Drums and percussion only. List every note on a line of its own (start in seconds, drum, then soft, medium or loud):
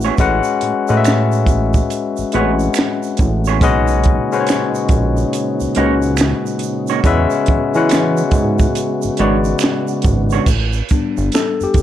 0.01 shaker soft
0.18 kick loud
0.18 closed hi-hat medium
0.18 shaker medium
0.44 shaker soft
0.61 closed hi-hat medium
0.88 shaker soft
1.04 finger snap medium
1.04 snare loud
1.04 closed hi-hat medium
1.04 shaker medium
1.32 shaker soft
1.46 kick medium
1.46 closed hi-hat medium
1.46 shaker soft
1.74 kick medium
1.74 shaker soft
1.90 closed hi-hat medium
1.90 shaker medium
2.17 shaker soft
2.32 closed hi-hat medium
2.59 shaker soft
2.74 finger snap medium
2.74 closed hi-hat medium
2.74 shaker medium
2.79 snare loud
3.03 shaker soft
3.17 kick medium
3.17 closed hi-hat medium
3.17 shaker soft
3.45 shaker soft
3.61 kick loud
3.61 closed hi-hat medium
3.61 shaker medium
3.88 shaker soft
4.04 kick medium
4.04 closed hi-hat medium
4.32 shaker soft
4.47 finger snap medium
4.47 snare loud
4.47 closed hi-hat medium
4.47 shaker medium
4.75 shaker soft
4.89 kick medium
4.89 closed hi-hat medium
4.89 shaker soft
5.17 shaker soft
5.33 closed hi-hat medium
5.33 shaker medium
5.60 shaker soft
5.75 closed hi-hat medium
6.02 shaker soft
6.17 finger snap medium
6.17 closed hi-hat medium
6.17 shaker medium
6.21 snare loud
6.46 shaker soft
6.59 closed hi-hat medium
6.59 shaker soft
6.87 shaker soft
7.04 kick loud
7.04 closed hi-hat medium
7.04 shaker medium
7.30 shaker soft
7.46 kick medium
7.46 closed hi-hat medium
7.74 shaker soft
7.89 finger snap medium
7.89 snare loud
7.89 closed hi-hat medium
7.89 shaker medium
8.17 shaker soft
8.31 kick medium
8.31 closed hi-hat medium
8.31 shaker soft
8.59 kick medium
8.59 shaker soft
8.75 closed hi-hat medium
8.75 shaker medium
9.02 shaker soft
9.17 closed hi-hat medium
9.44 shaker soft
9.59 finger snap medium
9.59 closed hi-hat medium
9.59 shaker medium
9.64 snare loud
9.88 shaker soft
10.02 kick medium
10.02 closed hi-hat medium
10.02 shaker soft
10.30 shaker soft
10.46 kick loud
10.46 crash medium
10.46 shaker medium
10.73 shaker soft
10.89 kick medium
10.89 closed hi-hat medium
10.89 shaker soft
11.17 shaker soft
11.32 finger snap medium
11.32 snare medium
11.32 closed hi-hat medium
11.32 shaker medium
11.61 shaker soft
11.74 kick medium
11.74 closed hi-hat medium
11.74 shaker soft